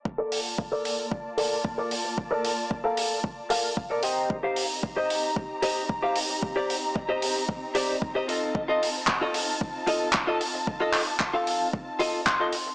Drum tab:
HH |-o-o-o-o|-o-o-o-o|-o-o-o-o|-o-o-o-o|
CP |--------|--------|--------|--------|
BD |o-o-o-o-|o-o-o-o-|o-o-o-o-|o-o-o-o-|

HH |-o-o-o-o|-o-o-o-o|
CP |--x---x-|-xx---x-|
BD |o-o-o-o-|o-o-o-o-|